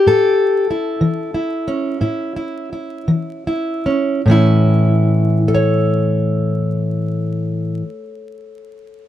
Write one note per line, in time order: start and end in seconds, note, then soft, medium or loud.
0.00 1.67 C#4 soft
0.00 0.69 G4 loud
0.06 0.63 A2 medium
0.06 4.26 A4 loud
0.71 1.33 E4 medium
1.01 1.61 E3 medium
1.34 2.00 E4 soft
1.68 3.85 C#4 medium
2.01 2.65 A2 medium
2.01 2.35 E4 soft
2.36 2.71 E4 soft
2.73 3.46 E4 soft
3.08 3.77 E3 medium
3.47 4.21 E4 medium
3.86 4.21 C#4 medium
4.26 7.81 A2 medium
4.26 7.83 E3 medium
4.30 5.48 C#4 medium
4.30 5.38 E4 medium
5.48 9.04 A4 medium
5.54 9.08 C#5 medium